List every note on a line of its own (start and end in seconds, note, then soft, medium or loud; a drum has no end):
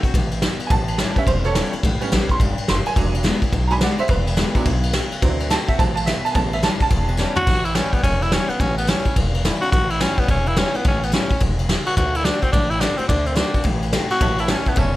0.03 0.15 C4 medium
0.03 0.14 F#4 medium
0.03 muted upright bass stroke medium
0.03 kick medium
0.03 ride medium
0.14 0.46 A1 medium
0.14 0.42 C3 medium
0.14 kick loud
0.14 ride medium
0.31 ride medium
0.42 0.70 B2 medium
0.42 snare loud
0.42 ride medium
0.59 muted upright bass stroke medium
0.59 ride medium
0.67 1.03 A1 loud
0.67 1.25 A2 medium
0.67 0.69 G#5 medium
0.67 kick loud
0.67 ride medium
0.71 1.15 A5 loud
0.88 ride medium
0.98 1.16 E3 medium
0.98 1.16 G3 medium
0.98 1.16 C#4 loud
0.98 1.16 E4 loud
0.98 snare loud
0.98 ride medium
1.16 1.54 G3 medium
1.16 1.54 B3 medium
1.16 1.54 C#4 medium
1.16 1.28 C#4 medium
1.16 1.27 E4 medium
1.16 1.28 E5 loud
1.16 muted upright bass stroke medium
1.16 kick medium
1.16 ride medium
1.26 1.59 E1 medium
1.26 1.82 E2 medium
1.26 1.44 C5 loud
1.26 kick loud
1.26 ride medium
1.44 1.71 A4 medium
1.44 1.72 C#5 loud
1.44 ride medium
1.55 1.73 E3 medium
1.55 1.73 G3 medium
1.55 1.73 C#4 loud
1.55 1.73 E4 loud
1.55 snare loud
1.55 ride medium
1.73 1.84 C#4 soft
1.73 1.84 E4 medium
1.73 muted upright bass stroke medium
1.73 ride medium
1.83 1.96 A1 medium
1.83 2.38 A2 loud
1.83 kick loud
1.83 ride medium
2.01 2.38 G3 medium
2.01 2.38 B3 medium
2.01 2.38 C#4 medium
2.01 muted upright bass stroke medium
2.01 ride medium
2.12 2.27 A1 medium
2.12 2.29 E3 medium
2.12 2.29 G3 medium
2.12 2.29 C#4 medium
2.12 2.29 E4 loud
2.12 snare loud
2.12 ride medium
2.29 2.41 C#4 medium
2.29 2.40 E4 medium
2.29 2.41 C6 loud
2.29 muted upright bass stroke medium
2.29 kick medium
2.29 ride medium
2.40 2.55 G1 medium
2.40 2.68 G2 medium
2.40 kick loud
2.40 ride loud
2.58 muted upright bass stroke medium
2.58 ride medium
2.68 2.83 F#1 medium
2.68 2.96 F#2 medium
2.68 2.86 C6 medium
2.68 snare loud
2.68 ride medium
2.86 3.14 G#5 loud
2.86 ride medium
2.96 3.29 E1 loud
2.96 3.51 E2 medium
2.96 3.40 F#3 medium
2.96 3.40 G#3 soft
2.96 3.40 D4 medium
2.96 kick loud
2.96 ride medium
3.14 ride medium
3.23 3.41 D3 medium
3.23 3.41 G#3 loud
3.23 3.42 B3 loud
3.23 3.41 E4 loud
3.23 snare loud
3.23 ride medium
3.42 3.53 B3 medium
3.42 3.52 E4 medium
3.42 muted upright bass stroke medium
3.42 kick medium
3.42 ride medium
3.52 3.85 B1 medium
3.52 4.07 B2 medium
3.52 kick loud
3.52 ride medium
3.67 3.80 F#3 soft
3.67 3.80 G#3 soft
3.67 3.80 D4 medium
3.67 3.69 A#5 medium
3.67 ride medium
3.71 3.81 G#5 medium
3.71 3.82 B5 loud
3.81 3.98 D3 loud
3.81 3.98 G#3 loud
3.81 3.98 B3 medium
3.81 3.97 E4 loud
3.81 3.98 D5 medium
3.81 3.99 F#5 loud
3.81 snare loud
3.81 ride medium
3.98 4.09 B3 soft
3.98 4.08 E4 medium
3.98 4.09 C5 loud
3.98 4.10 E5 loud
3.98 muted upright bass stroke medium
3.98 ride medium
4.08 4.41 E1 medium
4.08 4.63 E2 medium
4.08 4.64 B4 loud
4.08 kick loud
4.08 ride medium
4.27 ride medium
4.37 4.54 D3 medium
4.37 4.54 G#3 medium
4.37 4.55 B3 loud
4.37 4.54 E4 medium
4.37 snare loud
4.37 ride medium
4.55 4.72 F#3 medium
4.55 4.72 G#3 medium
4.55 4.66 B3 medium
4.55 4.72 D4 medium
4.55 4.65 E4 medium
4.55 muted upright bass stroke medium
4.55 kick medium
4.55 ride medium
4.66 4.98 B1 medium
4.66 4.93 B2 medium
4.66 kick loud
4.66 ride medium
4.83 ride medium
4.93 5.21 C#3 medium
4.93 snare loud
4.93 ride loud
5.11 muted upright bass stroke medium
5.11 ride medium
5.21 5.54 D2 medium
5.21 5.49 D3 loud
5.21 5.65 E3 medium
5.21 5.65 F#3 medium
5.21 5.66 C4 medium
5.21 kick loud
5.21 ride medium
5.40 ride medium
5.50 5.67 D3 loud
5.50 5.67 A3 medium
5.50 5.68 C4 loud
5.50 5.66 F#4 loud
5.50 5.68 A5 loud
5.50 snare loud
5.50 ride medium
5.67 5.78 C4 medium
5.67 5.78 F#4 medium
5.67 5.78 E5 loud
5.67 muted upright bass stroke medium
5.67 kick medium
5.67 ride medium
5.77 6.11 A1 medium
5.77 6.06 F#2 medium
5.77 5.94 E3 medium
5.77 5.94 F#3 soft
5.77 5.94 C4 medium
5.77 5.94 A5 loud
5.77 kick loud
5.77 ride medium
5.96 6.06 A5 loud
5.96 ride medium
6.06 6.34 B2 medium
6.06 6.23 E5 loud
6.06 snare loud
6.06 ride medium
6.25 6.34 A5 loud
6.25 muted upright bass stroke medium
6.25 ride medium
6.31 6.67 A1 loud
6.31 6.89 A2 medium
6.31 6.55 C#3 medium
6.31 6.55 G3 medium
6.31 6.56 B3 medium
6.31 6.34 G#5 medium
6.35 6.52 A5 loud
6.35 kick loud
6.35 ride medium
6.53 6.63 E5 medium
6.53 ride medium
6.63 6.80 E3 medium
6.63 6.80 G3 loud
6.63 6.80 C#4 medium
6.63 6.79 E4 medium
6.63 6.80 A5 loud
6.63 snare loud
6.63 ride medium
6.80 6.91 C#4 medium
6.80 6.90 E4 medium
6.80 7.36 A5 loud
6.80 muted upright bass stroke medium
6.80 kick medium
6.80 ride medium
6.90 7.23 E1 medium
6.90 7.45 E2 medium
6.90 kick loud
6.90 ride medium
7.08 ride medium
7.17 7.35 E3 medium
7.17 7.36 G3 loud
7.17 7.36 C#4 loud
7.17 7.34 E4 loud
7.17 snare medium
7.36 7.47 C#4 medium
7.36 7.46 E4 medium
7.36 7.66 F#4 loud
7.36 muted upright bass stroke medium
7.36 floor tom loud
7.47 7.79 A1 medium
7.47 8.01 A2 medium
7.47 kick loud
7.47 crash loud
7.65 7.77 E4 loud
7.65 ride medium
7.75 8.02 E3 medium
7.75 8.03 G3 medium
7.75 7.94 C#4 loud
7.75 8.03 C#4 medium
7.75 8.03 E4 loud
7.75 snare loud
7.75 ride medium
7.93 8.03 B3 medium
7.93 kick medium
7.93 ride medium
8.03 8.36 E1 medium
8.03 8.24 C#4 loud
8.03 kick loud
8.03 ride medium
8.22 8.35 E4 loud
8.22 ride medium
8.32 8.49 E3 medium
8.32 8.49 G3 medium
8.32 8.50 C#4 loud
8.32 8.49 C#4 medium
8.32 8.48 E4 medium
8.32 snare loud
8.32 ride medium
8.49 8.61 B3 medium
8.49 8.60 C#4 medium
8.49 8.59 E4 medium
8.49 muted upright bass stroke medium
8.49 ride medium
8.60 8.92 A1 loud
8.60 9.14 A2 medium
8.60 8.77 C#4 medium
8.60 kick loud
8.60 ride medium
8.78 8.91 B3 medium
8.78 ride medium
8.87 9.04 E3 medium
8.87 9.05 G3 medium
8.87 9.05 C#4 loud
8.87 9.17 C#4 medium
8.87 9.04 E4 medium
8.87 snare loud
8.87 ride medium
9.05 9.16 C#4 soft
9.05 9.15 E4 medium
9.05 kick medium
9.05 ride medium
9.16 9.48 E1 medium
9.16 9.70 E2 loud
9.16 kick loud
9.16 ride medium
9.35 ride medium
9.45 9.61 E3 medium
9.45 9.61 G3 medium
9.45 9.62 C#4 medium
9.45 9.61 E4 medium
9.45 snare loud
9.45 ride loud
9.61 9.73 C#4 medium
9.61 9.72 E4 medium
9.61 9.71 F#4 loud
9.61 muted upright bass stroke medium
9.61 ride medium
9.72 10.04 A1 medium
9.72 10.27 A2 medium
9.72 9.92 F#4 loud
9.72 kick loud
9.72 ride medium
9.90 10.02 E4 loud
9.90 ride medium
10.00 10.27 E3 medium
10.00 10.28 G3 medium
10.00 10.20 C#4 medium
10.00 10.28 C#4 medium
10.00 10.28 E4 medium
10.00 snare loud
10.00 ride medium
10.18 10.29 B3 medium
10.18 muted upright bass stroke medium
10.18 kick medium
10.18 ride medium
10.28 10.60 E1 medium
10.28 10.83 E2 medium
10.28 10.49 C#4 medium
10.28 kick loud
10.28 ride medium
10.46 10.60 E4 medium
10.46 ride medium
10.57 10.73 E3 medium
10.57 10.74 G3 medium
10.57 10.74 C#4 loud
10.57 10.77 C#4 medium
10.57 10.73 E4 medium
10.57 snare loud
10.57 ride medium
10.74 10.85 B3 medium
10.74 10.85 C#4 medium
10.74 10.84 E4 medium
10.74 muted upright bass stroke medium
10.74 ride medium
10.85 11.17 A1 medium
10.85 11.39 A2 medium
10.85 11.06 C#4 medium
10.85 kick loud
10.85 ride medium
11.03 11.13 B3 medium
11.03 ride medium
11.12 11.29 E3 medium
11.12 11.29 G3 medium
11.12 11.29 C#4 medium
11.12 11.39 C#4 medium
11.12 11.28 E4 medium
11.12 snare loud
11.12 ride medium
11.30 11.41 C#4 medium
11.30 11.40 E4 medium
11.30 muted upright bass stroke medium
11.30 kick medium
11.30 ride medium
11.40 11.73 E1 medium
11.40 11.68 B2 medium
11.40 kick loud
11.40 ride medium
11.59 ride medium
11.69 11.96 C#3 medium
11.69 snare loud
11.69 ride medium
11.86 11.96 F#4 loud
11.86 muted upright bass stroke medium
11.86 ride medium
11.97 12.29 D2 medium
11.97 12.24 D3 medium
11.97 12.17 F#4 loud
11.97 kick loud
11.97 ride medium
12.15 12.26 E4 loud
12.15 ride medium
12.25 12.42 D3 medium
12.25 12.42 A3 loud
12.25 12.42 C4 medium
12.25 12.43 D4 medium
12.25 12.41 F#4 medium
12.25 snare loud
12.25 ride medium
12.42 12.51 C4 medium
12.42 12.53 C4 medium
12.42 12.52 F#4 medium
12.42 kick medium
12.42 ride medium
12.52 12.85 A1 medium
12.52 13.07 A2 medium
12.52 12.72 D4 loud
12.52 kick loud
12.52 ride medium
12.70 12.82 E4 medium
12.70 ride medium
12.80 12.98 D3 medium
12.80 12.98 A3 medium
12.80 12.98 C4 medium
12.80 12.98 D4 medium
12.80 12.96 F#4 loud
12.80 snare loud
12.80 ride medium
12.97 13.07 C4 medium
12.97 13.09 C4 medium
12.97 13.08 F#4 medium
12.97 muted upright bass stroke medium
12.97 ride medium
13.08 13.41 D2 medium
13.08 13.34 D3 loud
13.08 13.27 D4 medium
13.08 kick loud
13.08 ride medium
13.26 13.37 C4 medium
13.26 ride medium
13.35 13.53 D3 medium
13.35 13.53 A3 medium
13.35 13.54 C4 medium
13.35 13.64 D4 medium
13.35 13.53 F#4 medium
13.35 snare loud
13.35 ride medium
13.54 13.65 C4 medium
13.54 13.64 F#4 medium
13.54 muted upright bass stroke medium
13.54 kick medium
13.54 ride medium
13.64 13.97 A1 medium
13.64 14.18 A2 medium
13.64 kick loud
13.64 ride medium
13.82 ride medium
13.93 14.10 D3 medium
13.93 14.10 A3 medium
13.93 14.10 C4 loud
13.93 14.09 F#4 loud
13.93 snare loud
13.93 ride medium
14.10 14.21 C4 medium
14.10 14.20 F#4 medium
14.10 14.41 F#4 loud
14.10 muted upright bass stroke medium
14.10 ride medium
14.20 14.53 A1 medium
14.20 14.75 A2 loud
14.20 14.31 C#5 loud
14.20 14.32 E5 medium
14.20 14.32 A5 loud
14.20 kick loud
14.20 ride medium
14.38 14.52 E4 medium
14.38 14.45 C#5 medium
14.38 14.45 E5 medium
14.38 14.46 A5 loud
14.38 ride medium
14.48 14.65 E3 medium
14.48 14.66 G3 medium
14.48 14.66 C#4 medium
14.48 14.70 C#4 medium
14.48 14.65 E4 medium
14.48 14.59 C#5 medium
14.48 14.60 E5 medium
14.48 14.60 A5 medium
14.48 snare loud
14.48 ride medium
14.66 14.80 B3 medium
14.66 14.77 C#4 soft
14.66 14.76 E4 medium
14.66 14.73 C#5 medium
14.66 14.73 E5 medium
14.66 14.73 A5 medium
14.66 muted upright bass stroke medium
14.66 kick medium
14.66 ride medium
14.76 14.96 E1 medium
14.76 14.96 E2 loud
14.76 14.95 C#4 medium
14.76 14.88 C#5 medium
14.76 14.88 E5 medium
14.76 14.89 A5 medium
14.76 kick loud
14.76 ride medium